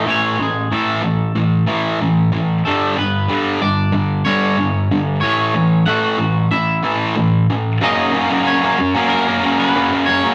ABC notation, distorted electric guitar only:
X:1
M:4/4
L:1/16
Q:1/4=93
K:Alyd
V:1 name="Distorted electric guitar" clef=bass
[A,,E,A,]2 [A,,E,]2 [A,,E,A,]2 [A,,E,]2 [A,,E,]2 [A,,E,A,]2 [A,,E,]2 [A,,E,]2 | [=G,,=D,=G,]2 [G,,D,]2 [G,,D,G,]2 [G,,D,]2 [G,,D,]2 [G,,D,G,]2 [G,,D,]2 [G,,D,]2 | [A,,E,A,]2 [A,,E,]2 [A,,E,A,]2 [A,,E,]2 [A,,E,]2 [A,,E,A,]2 [A,,E,]2 [A,,E,]2 | [F,,C,F,^A,C]2 [C,F,A,C] [F,,C,F,A,C]2 [F,A,C]2 [F,A,C]2 [F,A,C] [C,F,A,C]2 [F,,C,F,A,C] [F,A,C] [C,F,A,C] [F,A,C] |]